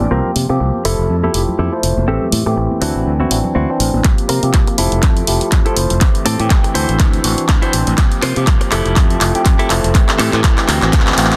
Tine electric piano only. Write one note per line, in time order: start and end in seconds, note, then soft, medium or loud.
0.11 0.46 F3 medium
0.11 0.46 A#3 medium
0.11 0.46 C4 medium
0.11 0.46 G4 medium
0.49 0.82 F3 medium
0.49 0.82 A#3 medium
0.49 0.82 C4 medium
0.49 0.83 G4 loud
0.85 1.31 F3 medium
0.85 1.31 A3 medium
0.85 1.32 E4 medium
0.85 1.32 A4 loud
1.34 1.69 F3 medium
1.34 1.69 A3 medium
1.34 1.69 E4 medium
1.34 1.69 G4 medium
1.72 2.05 F3 medium
1.72 2.05 A3 medium
1.72 2.05 E4 medium
1.72 2.06 C5 medium
2.07 2.43 E3 medium
2.07 2.43 A3 medium
2.07 2.43 C4 medium
2.07 2.43 G4 medium
2.46 2.79 E3 medium
2.46 2.79 A3 medium
2.46 2.79 C4 medium
2.46 2.79 G4 loud
2.81 3.28 E3 medium
2.81 3.28 C4 medium
2.81 3.28 D4 medium
2.81 3.28 A4 loud
3.31 3.66 E3 medium
3.31 3.66 C4 medium
3.31 3.66 D4 medium
3.31 3.66 F#4 medium
3.69 4.02 E3 medium
3.69 4.02 C4 medium
3.69 4.02 D4 medium
3.69 4.02 C5 loud
4.04 4.39 F3 medium
4.04 4.40 A#3 medium
4.43 4.76 F3 medium
4.43 4.76 A#3 medium
4.43 4.76 C4 medium
4.43 4.76 G4 loud
4.78 5.25 F3 medium
4.78 5.25 A3 medium
4.78 5.25 E4 medium
4.78 5.25 A4 loud
5.27 5.62 F3 medium
5.27 5.63 A3 medium
5.27 5.63 E4 medium
5.27 5.63 G4 medium
5.65 5.98 F3 medium
5.65 5.99 A3 medium
5.65 5.99 E4 medium
5.65 5.99 C5 loud
6.01 6.36 E3 medium
6.01 6.36 A3 medium
6.01 6.37 G4 loud
6.39 6.72 E3 loud
6.39 6.72 A3 medium
6.39 6.72 C4 medium
6.39 6.73 G4 loud
6.75 7.21 E3 medium
6.75 7.22 C4 medium
6.75 7.22 D4 medium
6.75 7.22 A4 loud
7.24 7.59 E3 medium
7.24 7.59 C4 medium
7.24 7.59 D4 medium
7.24 7.60 F#4 medium
7.62 7.95 E3 medium
7.62 7.95 C4 medium
7.62 7.96 D4 medium
7.62 7.96 C5 loud
7.98 8.33 A#3 medium
8.36 8.69 F3 medium
8.36 8.69 A#3 medium
8.36 8.69 C4 medium
8.36 8.70 G4 loud
8.71 8.94 F3 medium
8.71 8.95 A3 medium
8.71 8.95 E4 medium
8.71 8.95 A4 medium
8.96 9.31 F3 medium
8.96 9.31 A3 medium
8.96 9.32 C4 medium
8.96 9.32 G4 medium
9.34 9.67 F3 medium
9.34 9.68 A3 medium
9.34 9.68 C4 medium
9.34 9.68 G4 medium
9.70 9.93 F3 medium
9.70 9.93 A3 medium
9.70 9.93 E4 medium
9.70 9.93 A4 loud
9.95 10.30 C4 medium
10.33 10.42 E3 loud
10.33 10.42 A3 medium
10.33 10.42 C4 medium
10.33 10.42 G4 loud
10.82 10.91 E3 loud
10.82 10.91 A3 medium
10.82 10.92 C4 medium
10.82 10.92 F#4 loud
10.93 11.16 E3 loud
10.93 11.16 A3 medium
10.93 11.16 C4 medium
10.93 11.16 F#4 loud
11.17 11.37 E3 medium
11.17 11.37 A3 medium
11.17 11.37 C4 medium
11.17 11.37 F#4 loud